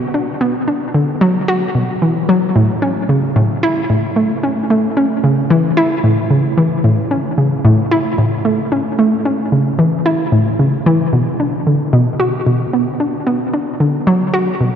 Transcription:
0.14 D4
0.41 B3
0.68 D4
0.94 D3
1.21 F#3
1.48 F#4
1.75 B2
2.02 E3
2.29 F#3
2.56 A2
2.82 C#4
3.09 C#3
3.36 A2
3.63 E4
3.90 A2
4.16 A3
4.43 C#4
4.70 A3
4.97 C#4
5.24 C#3
5.50 E3
5.77 E4
6.04 A2
6.30 C#3
6.58 E3
6.84 A2
7.11 C#4
7.38 C#3
7.65 A2
7.91 E4
8.18 A2
8.45 A3
8.72 C#4
8.99 A3
9.25 C#4
9.52 C#3
9.79 E3
10.06 E4
10.32 A2
10.59 C#3
10.86 E3
11.13 B2
11.40 D4
11.67 D3
11.93 B2
12.20 F#4
12.47 B2
12.73 B3
13.00 D4
13.27 B3
13.54 D4
13.80 D3
14.07 F#3
14.34 F#4
14.61 B2

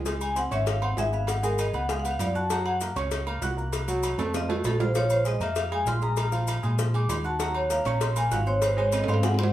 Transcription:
Already playing: C#2
0.05 G#3 G#4 G#5, cowbell, low agogo, maracas
0.21 G#5, low agogo, maracas
0.36 C4 C5 F#5 C6, cowbell, low timbale, maracas
0.51 G#1 C#4 C#5 E5 C#6, cowbell, low agogo, maracas
0.66 F5, cowbell, low agogo, maracas
0.81 C4 C5 F#5 C6, low agogo
0.97 G#1 G#4 E5 G#5 G#6, cowbell, low timbale, maracas
1.12 B3 B4 F5 B5, maracas
1.27 F#5, cowbell, low agogo, maracas
1.43 G#3 G#4 A#4 G#5, low agogo, maracas
1.58 D#5, cowbell, low timbale, low agogo, maracas
1.73 C#2 B3 B4 F#5 B5, low agogo, maracas
1.89 G#3 G#4 F5 G#5, cowbell, maracas
2.00 F#5
2.05 B3 B4 B5, low agogo, maracas
2.11 F5
2.19 F#2 D5, cowbell, low timbale, low agogo, maracas
2.35 F#4 F#5 A5 F#6, maracas
2.50 F#3 F#4 F#5 A#5, cowbell, low agogo, maracas
2.66 F#5, low agogo
2.81 A#3 A#4 A#5, cowbell, low timbale, maracas
2.96 C#2 C#4 C#5 C#6, cowbell, low agogo, maracas
3.11 cowbell, low agogo, maracas
3.26 A#3 A#4 A#5, low agogo
3.42 C2 F#4 F#5 F#6, cowbell, low timbale, maracas
3.57 A#3 A#4 A#5, maracas
3.73 cowbell, low agogo, maracas
3.88 F#3 F#4 F#5, low agogo, maracas
4.03 cowbell, low timbale, low agogo, maracas
4.18 F2 A3 A4 A5, high timbale, low agogo, maracas
4.34 F3 F4 D#5 F5, cowbell, high timbale, maracas
4.48 A3 F#4 A4 A5, low timbale, low agogo
4.64 A#1 A4, cowbell, low timbale, low agogo, maracas
4.80 F4 C5 F5 F6, low timbale, maracas
4.95 F3 F4 C#5 F5, cowbell, low agogo, maracas
5.10 C5, low agogo, maracas
5.25 G#3 G#4 D#5 G#5, cowbell, low timbale, maracas
5.40 F2 A#3 A#4 E5 A#5, cowbell, low agogo, maracas
5.56 F5, cowbell, low agogo, maracas
5.71 G#3 G#4 G#5, low agogo
5.86 A#1 F4 F5 C6 F6, cowbell, low timbale, maracas
6.02 G#3 G#4 G#5 A#5, maracas
6.16 cowbell, low agogo, maracas
6.32 F3 F4 F5, low agogo, maracas
6.47 cowbell, low timbale, low agogo, maracas
6.63 A#2 G#3 G#4 G#5, low agogo, maracas
6.78 F3 F4 F5, cowbell, maracas
6.94 G#3 G#4 G#5 D6, low agogo
7.08 D#2 C6, cowbell, low timbale, low agogo, maracas
7.24 F#4 F#5 A5 F#6, maracas
7.39 F#3 F#4 F#5 A#5, cowbell, low agogo, maracas
7.55 C#5, low agogo
7.70 A#3 A#4 F5 A#5, cowbell, low timbale, maracas
7.85 A#1 C#4 C#5 A#5 C#6, cowbell, low agogo, maracas
8.01 C6, cowbell, low agogo, maracas
8.16 A#3 A#4 G#5 A#5, low agogo, maracas
8.31 G#1 F#4 F5 F#5 F#6, cowbell, low timbale, maracas
8.46 C4 C5 C#5 C6, maracas
8.62 C5, cowbell, low agogo, maracas
8.77 G#3 G#4 C#5 G#5, low agogo
8.92 D#5, cowbell, high timbale, low agogo, maracas
9.04 G#2, high timbale
9.08 C4 C5 F5 C6, low agogo, maracas
9.14 high timbale
9.23 G#3 G#4 F#5 G#5, cowbell, high bongo, high timbale, maracas
9.34 high timbale
9.39 C4 C5 C6, high bongo, low agogo
9.44 low timbale

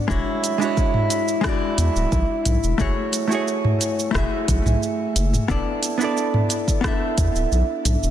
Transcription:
0.08 E1 G#3 D4 E4 F#4 C#5, kick, cabasa
0.44 closed hi-hat, cabasa
0.58 G#3 D4 E4, cabasa
0.63 F#4 C#5
0.77 kick, cabasa
0.94 mid tom
1.10 closed hi-hat, cabasa
1.28 cabasa
1.41 G#3 D4 E4, kick, cross-stick, cabasa
1.47 F#4 D5
1.78 E2, closed hi-hat, cabasa
1.96 D1, cabasa
2.12 B1, kick, cabasa
2.45 B1, closed hi-hat, mid tom, cabasa
2.63 E1, cabasa
2.78 F#1 A3 E4 F#4 G#4 C#5, kick, cabasa
3.13 closed hi-hat, cabasa
3.28 A3 E4 F#4
3.32 G#4 C#5, cabasa
3.48 cabasa
3.65 mid tom
3.81 closed hi-hat, cabasa
3.99 cabasa
4.11 E1 A3 E4 F#4, kick, cross-stick
4.16 G#4 E5, cabasa
4.48 B1, kick, closed hi-hat, cabasa
4.65 B1, mid tom, cabasa
4.83 cabasa
5.16 F#1, closed hi-hat, cabasa
5.33 mid tom, cabasa
5.48 E1 B3 D4 E4 A4 D5, kick, cabasa
5.83 closed hi-hat, cabasa
5.98 B3 D4 E4, cabasa
6.03 A4 D5
6.17 cabasa
6.34 mid tom
6.50 closed hi-hat, cabasa
6.68 kick, cabasa
6.81 B3 D4 E4, kick, cross-stick, cabasa
6.86 A4 E5
7.18 E2, kick, closed hi-hat, cabasa
7.36 D1, cabasa
7.52 B1, cabasa
7.85 B1, closed hi-hat, mid tom, cabasa
8.03 E1, cabasa

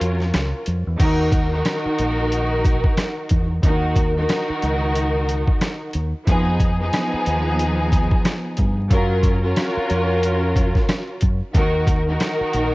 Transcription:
Already playing: C#4 F4 F#4 A#4
0.01 F2, closed hi-hat
0.20 snare
0.34 C#2, cross-stick, snare, closed hi-hat
0.66 F2, closed hi-hat
0.87 E2
0.98 D#2 D#3 D#4 F#4 A#4, kick, closed hi-hat, crash
1.32 kick, closed hi-hat
1.52 D#3 D#4 F#4 A#4
1.65 cross-stick, snare, closed hi-hat
1.86 muted fingered electric bass stroke
1.98 A#1, closed hi-hat
2.32 closed hi-hat
2.65 kick, closed hi-hat
2.84 kick
2.97 cross-stick, snare, closed hi-hat
3.29 E2, kick, closed hi-hat
3.63 D#2 D#3 D#4 F#4 A#4, kick, closed hi-hat
3.96 kick, closed hi-hat
4.16 D#3 D#4 F#4 A#4
4.29 cross-stick, snare, closed hi-hat
4.50 muted fingered electric bass stroke
4.62 C#2, closed hi-hat
4.95 closed hi-hat
5.29 closed hi-hat
5.48 kick
5.61 cross-stick, snare, closed hi-hat
5.93 D#2, closed hi-hat
6.26 F2 F3 B3 D#4 G#4, kick, closed hi-hat
6.60 kick, closed hi-hat
6.79 F3 B3 D#4 G#4
6.93 cross-stick, snare, closed hi-hat
7.13 muted fingered electric bass stroke
7.26 D#2, closed hi-hat
7.59 closed hi-hat
7.92 kick, closed hi-hat
8.11 kick
8.25 cross-stick, snare, closed hi-hat
8.57 G2, kick, closed hi-hat
8.90 F#2 F#3 C#4 F4 A#4, kick, closed hi-hat
9.23 kick, closed hi-hat
9.42 C#4 F4 F#4 A#4
9.56 cross-stick, snare, closed hi-hat
9.77 muted fingered electric bass stroke
9.90 F2, closed hi-hat
10.23 closed hi-hat
10.56 kick, closed hi-hat
10.75 kick, snare
10.89 cross-stick, snare, closed hi-hat
11.21 F#2, kick, closed hi-hat
11.53 D#2 D#3 D#4 F#4 A#4, kick, closed hi-hat
11.87 kick, closed hi-hat
12.07 D#3 D#4 F#4 A#4
12.20 cross-stick, snare, closed hi-hat
12.41 muted fingered electric bass stroke
12.53 A#1, closed hi-hat

